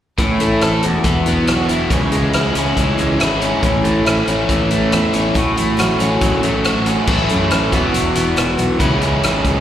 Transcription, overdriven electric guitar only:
0, 0, Header, 1, 2, 480
1, 0, Start_track
1, 0, Tempo, 430725
1, 211, Time_signature, 4, 2, 24, 8
1, 10702, End_track
2, 0, Start_track
2, 0, Title_t, "Overdriven electric guitar"
2, 0, Program_c, 0, 29
2, 212, Note_on_c, 0, 45, 65
2, 454, Note_on_c, 0, 57, 54
2, 701, Note_on_c, 0, 69, 73
2, 932, Note_off_c, 0, 45, 0
2, 933, Note_off_c, 0, 57, 0
2, 936, Note_off_c, 0, 69, 0
2, 937, Note_on_c, 0, 40, 59
2, 1173, Note_on_c, 0, 52, 61
2, 1421, Note_on_c, 0, 59, 58
2, 1658, Note_on_c, 0, 66, 72
2, 1895, Note_on_c, 0, 64, 60
2, 2127, Note_on_c, 0, 49, 74
2, 2134, Note_off_c, 0, 40, 0
2, 2135, Note_off_c, 0, 66, 0
2, 2136, Note_off_c, 0, 59, 0
2, 2364, Note_on_c, 0, 56, 65
2, 2606, Note_off_c, 0, 64, 0
2, 2606, Note_on_c, 0, 64, 68
2, 2844, Note_on_c, 0, 61, 65
2, 3079, Note_off_c, 0, 52, 0
2, 3083, Note_on_c, 0, 52, 63
2, 3312, Note_off_c, 0, 56, 0
2, 3326, Note_on_c, 0, 56, 62
2, 3329, Note_off_c, 0, 49, 0
2, 3547, Note_off_c, 0, 64, 0
2, 3561, Note_on_c, 0, 64, 73
2, 3797, Note_off_c, 0, 61, 0
2, 3801, Note_on_c, 0, 61, 69
2, 4032, Note_on_c, 0, 45, 76
2, 4046, Note_off_c, 0, 64, 0
2, 4047, Note_off_c, 0, 52, 0
2, 4048, Note_off_c, 0, 56, 0
2, 4281, Note_on_c, 0, 57, 61
2, 4516, Note_on_c, 0, 64, 68
2, 4768, Note_off_c, 0, 61, 0
2, 4772, Note_on_c, 0, 61, 65
2, 5009, Note_on_c, 0, 52, 70
2, 5249, Note_off_c, 0, 57, 0
2, 5253, Note_on_c, 0, 57, 68
2, 5476, Note_off_c, 0, 64, 0
2, 5489, Note_on_c, 0, 64, 69
2, 5712, Note_off_c, 0, 61, 0
2, 5726, Note_on_c, 0, 61, 65
2, 5964, Note_off_c, 0, 45, 0
2, 5968, Note_off_c, 0, 61, 0
2, 5968, Note_on_c, 0, 45, 72
2, 5970, Note_off_c, 0, 52, 0
2, 5970, Note_off_c, 0, 64, 0
2, 5972, Note_off_c, 0, 57, 0
2, 6207, Note_on_c, 0, 57, 61
2, 6453, Note_on_c, 0, 66, 76
2, 6698, Note_on_c, 0, 61, 62
2, 6932, Note_on_c, 0, 54, 70
2, 7157, Note_off_c, 0, 57, 0
2, 7169, Note_off_c, 0, 45, 0
2, 7171, Note_on_c, 0, 57, 64
2, 7392, Note_off_c, 0, 66, 0
2, 7405, Note_on_c, 0, 66, 70
2, 7638, Note_off_c, 0, 61, 0
2, 7652, Note_on_c, 0, 61, 59
2, 7878, Note_on_c, 0, 45, 95
2, 7881, Note_off_c, 0, 57, 0
2, 7886, Note_off_c, 0, 54, 0
2, 7888, Note_off_c, 0, 66, 0
2, 7891, Note_off_c, 0, 61, 0
2, 7891, Note_on_c, 0, 52, 98
2, 7894, Note_on_c, 0, 57, 95
2, 7903, Note_on_c, 0, 61, 90
2, 7909, Note_on_c, 0, 64, 92
2, 8589, Note_off_c, 0, 45, 0
2, 8598, Note_off_c, 0, 57, 0
2, 8602, Note_off_c, 0, 61, 0
2, 8606, Note_on_c, 0, 40, 81
2, 8610, Note_on_c, 0, 47, 74
2, 8612, Note_off_c, 0, 52, 0
2, 8616, Note_on_c, 0, 52, 81
2, 8624, Note_on_c, 0, 59, 85
2, 8625, Note_off_c, 0, 64, 0
2, 8625, Note_on_c, 0, 64, 88
2, 8635, Note_on_c, 0, 66, 85
2, 9793, Note_off_c, 0, 40, 0
2, 9793, Note_off_c, 0, 47, 0
2, 9797, Note_on_c, 0, 49, 93
2, 9800, Note_off_c, 0, 52, 0
2, 9802, Note_off_c, 0, 59, 0
2, 9805, Note_on_c, 0, 52, 91
2, 9808, Note_off_c, 0, 66, 0
2, 9811, Note_on_c, 0, 56, 80
2, 9816, Note_off_c, 0, 64, 0
2, 9820, Note_on_c, 0, 61, 102
2, 9823, Note_on_c, 0, 64, 113
2, 10702, Note_off_c, 0, 49, 0
2, 10702, Note_off_c, 0, 52, 0
2, 10702, Note_off_c, 0, 56, 0
2, 10702, Note_off_c, 0, 61, 0
2, 10702, Note_off_c, 0, 64, 0
2, 10702, End_track
0, 0, End_of_file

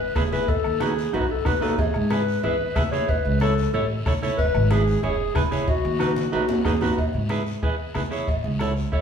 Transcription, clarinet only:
0, 0, Header, 1, 2, 480
1, 0, Start_track
1, 0, Key_signature, 4, "major"
1, 0, Tempo, 324851
1, 723, Time_signature, 4, 2, 24, 8
1, 13318, End_track
2, 0, Start_track
2, 0, Title_t, "Clarinet"
2, 0, Program_c, 0, 71
2, 0, Note_on_c, 0, 71, 91
2, 236, Note_on_c, 0, 68, 89
2, 258, Note_off_c, 0, 71, 0
2, 490, Note_on_c, 0, 71, 91
2, 512, Note_off_c, 0, 68, 0
2, 725, Note_on_c, 0, 69, 98
2, 747, Note_off_c, 0, 71, 0
2, 1215, Note_on_c, 0, 68, 101
2, 1237, Note_off_c, 0, 69, 0
2, 1686, Note_on_c, 0, 66, 94
2, 1708, Note_off_c, 0, 68, 0
2, 1942, Note_on_c, 0, 69, 86
2, 1965, Note_off_c, 0, 66, 0
2, 2166, Note_on_c, 0, 71, 97
2, 2188, Note_off_c, 0, 69, 0
2, 2404, Note_on_c, 0, 69, 91
2, 2426, Note_off_c, 0, 71, 0
2, 2631, Note_off_c, 0, 69, 0
2, 2640, Note_on_c, 0, 68, 93
2, 3123, Note_on_c, 0, 71, 105
2, 3145, Note_off_c, 0, 68, 0
2, 3602, Note_off_c, 0, 71, 0
2, 3609, Note_on_c, 0, 71, 100
2, 4071, Note_on_c, 0, 76, 97
2, 4094, Note_off_c, 0, 71, 0
2, 4298, Note_off_c, 0, 76, 0
2, 4307, Note_on_c, 0, 73, 99
2, 4557, Note_on_c, 0, 71, 98
2, 4579, Note_off_c, 0, 73, 0
2, 5032, Note_off_c, 0, 71, 0
2, 5041, Note_on_c, 0, 69, 111
2, 5486, Note_off_c, 0, 69, 0
2, 5519, Note_on_c, 0, 69, 88
2, 5742, Note_off_c, 0, 69, 0
2, 6470, Note_on_c, 0, 71, 109
2, 6961, Note_on_c, 0, 68, 113
2, 6983, Note_off_c, 0, 71, 0
2, 7430, Note_off_c, 0, 68, 0
2, 7439, Note_on_c, 0, 68, 105
2, 7884, Note_off_c, 0, 68, 0
2, 7913, Note_on_c, 0, 64, 94
2, 8394, Note_on_c, 0, 66, 105
2, 8416, Note_off_c, 0, 64, 0
2, 9349, Note_off_c, 0, 66, 0
2, 9357, Note_on_c, 0, 66, 91
2, 9803, Note_off_c, 0, 66, 0
2, 9830, Note_on_c, 0, 68, 95
2, 10080, Note_on_c, 0, 66, 84
2, 10102, Note_off_c, 0, 68, 0
2, 10318, Note_off_c, 0, 66, 0
2, 13318, End_track
0, 0, End_of_file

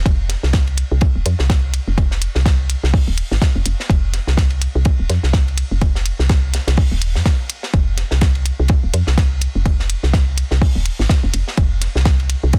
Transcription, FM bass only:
0, 0, Header, 1, 2, 480
1, 0, Start_track
1, 0, Tempo, 480000
1, 56, Time_signature, 4, 2, 24, 8
1, 12589, End_track
2, 0, Start_track
2, 0, Title_t, "FM bass"
2, 0, Program_c, 0, 39
2, 56, Note_on_c, 0, 29, 96
2, 353, Note_off_c, 0, 29, 0
2, 434, Note_on_c, 0, 36, 86
2, 833, Note_off_c, 0, 36, 0
2, 915, Note_on_c, 0, 36, 97
2, 1053, Note_off_c, 0, 36, 0
2, 1155, Note_on_c, 0, 27, 75
2, 1219, Note_off_c, 0, 27, 0
2, 1257, Note_on_c, 0, 41, 102
2, 1344, Note_off_c, 0, 41, 0
2, 1396, Note_on_c, 0, 36, 79
2, 1793, Note_off_c, 0, 36, 0
2, 1876, Note_on_c, 0, 29, 87
2, 2273, Note_off_c, 0, 29, 0
2, 2356, Note_on_c, 0, 36, 86
2, 2753, Note_off_c, 0, 36, 0
2, 2835, Note_on_c, 0, 36, 94
2, 2973, Note_off_c, 0, 36, 0
2, 3075, Note_on_c, 0, 27, 98
2, 3213, Note_off_c, 0, 27, 0
2, 3315, Note_on_c, 0, 32, 102
2, 3379, Note_off_c, 0, 32, 0
2, 3555, Note_on_c, 0, 29, 100
2, 3619, Note_off_c, 0, 29, 0
2, 3657, Note_on_c, 0, 29, 83
2, 3744, Note_off_c, 0, 29, 0
2, 3896, Note_on_c, 0, 29, 99
2, 4192, Note_off_c, 0, 29, 0
2, 4274, Note_on_c, 0, 36, 85
2, 4673, Note_off_c, 0, 36, 0
2, 4754, Note_on_c, 0, 36, 96
2, 4892, Note_off_c, 0, 36, 0
2, 4994, Note_on_c, 0, 27, 77
2, 5058, Note_off_c, 0, 27, 0
2, 5096, Note_on_c, 0, 41, 102
2, 5183, Note_off_c, 0, 41, 0
2, 5234, Note_on_c, 0, 36, 82
2, 5632, Note_off_c, 0, 36, 0
2, 5714, Note_on_c, 0, 29, 87
2, 6113, Note_off_c, 0, 29, 0
2, 6194, Note_on_c, 0, 36, 87
2, 6593, Note_off_c, 0, 36, 0
2, 6674, Note_on_c, 0, 36, 97
2, 6812, Note_off_c, 0, 36, 0
2, 6914, Note_on_c, 0, 27, 96
2, 7154, Note_on_c, 0, 41, 91
2, 7169, Note_off_c, 0, 27, 0
2, 7218, Note_off_c, 0, 41, 0
2, 7736, Note_on_c, 0, 29, 96
2, 8033, Note_off_c, 0, 29, 0
2, 8114, Note_on_c, 0, 36, 86
2, 8513, Note_off_c, 0, 36, 0
2, 8595, Note_on_c, 0, 36, 94
2, 8733, Note_off_c, 0, 36, 0
2, 8835, Note_on_c, 0, 27, 77
2, 8899, Note_off_c, 0, 27, 0
2, 8936, Note_on_c, 0, 41, 99
2, 9023, Note_off_c, 0, 41, 0
2, 9074, Note_on_c, 0, 36, 79
2, 9472, Note_off_c, 0, 36, 0
2, 9554, Note_on_c, 0, 29, 87
2, 9953, Note_off_c, 0, 29, 0
2, 10034, Note_on_c, 0, 36, 88
2, 10433, Note_off_c, 0, 36, 0
2, 10514, Note_on_c, 0, 36, 94
2, 10652, Note_off_c, 0, 36, 0
2, 10754, Note_on_c, 0, 27, 98
2, 10892, Note_off_c, 0, 27, 0
2, 10994, Note_on_c, 0, 32, 102
2, 11058, Note_off_c, 0, 32, 0
2, 11235, Note_on_c, 0, 29, 100
2, 11299, Note_off_c, 0, 29, 0
2, 11337, Note_on_c, 0, 29, 79
2, 11424, Note_off_c, 0, 29, 0
2, 11576, Note_on_c, 0, 29, 95
2, 11872, Note_off_c, 0, 29, 0
2, 11955, Note_on_c, 0, 36, 86
2, 12353, Note_off_c, 0, 36, 0
2, 12434, Note_on_c, 0, 36, 95
2, 12572, Note_off_c, 0, 36, 0
2, 12589, End_track
0, 0, End_of_file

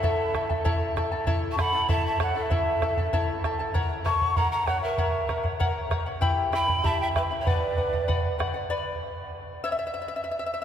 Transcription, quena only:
0, 0, Header, 1, 2, 480
1, 0, Start_track
1, 0, Key_signature, 2, "minor"
1, 0, Tempo, 620476
1, 29, Time_signature, 2, 2, 24, 8
1, 8234, End_track
2, 0, Start_track
2, 0, Title_t, "Quena"
2, 0, Program_c, 0, 77
2, 0, Note_on_c, 0, 76, 82
2, 634, Note_off_c, 0, 76, 0
2, 1178, Note_on_c, 0, 85, 77
2, 1239, Note_on_c, 0, 83, 106
2, 1251, Note_off_c, 0, 85, 0
2, 1472, Note_off_c, 0, 83, 0
2, 1480, Note_on_c, 0, 81, 99
2, 1585, Note_off_c, 0, 81, 0
2, 1607, Note_on_c, 0, 81, 92
2, 1708, Note_off_c, 0, 81, 0
2, 1724, Note_on_c, 0, 78, 88
2, 1840, Note_off_c, 0, 78, 0
2, 1840, Note_on_c, 0, 78, 75
2, 1874, Note_on_c, 0, 76, 81
2, 1881, Note_off_c, 0, 78, 0
2, 2551, Note_off_c, 0, 76, 0
2, 3138, Note_on_c, 0, 85, 105
2, 3379, Note_on_c, 0, 82, 91
2, 3391, Note_off_c, 0, 85, 0
2, 3488, Note_off_c, 0, 82, 0
2, 3492, Note_on_c, 0, 82, 87
2, 3611, Note_on_c, 0, 78, 92
2, 3622, Note_off_c, 0, 82, 0
2, 3722, Note_off_c, 0, 78, 0
2, 3727, Note_on_c, 0, 76, 78
2, 4422, Note_off_c, 0, 76, 0
2, 5060, Note_on_c, 0, 83, 106
2, 5304, Note_on_c, 0, 81, 96
2, 5316, Note_off_c, 0, 83, 0
2, 5415, Note_off_c, 0, 81, 0
2, 5419, Note_on_c, 0, 79, 84
2, 5466, Note_off_c, 0, 79, 0
2, 5535, Note_on_c, 0, 76, 86
2, 5581, Note_off_c, 0, 76, 0
2, 5723, Note_on_c, 0, 76, 54
2, 5783, Note_on_c, 0, 74, 80
2, 5795, Note_off_c, 0, 76, 0
2, 6503, Note_off_c, 0, 74, 0
2, 8234, End_track
0, 0, End_of_file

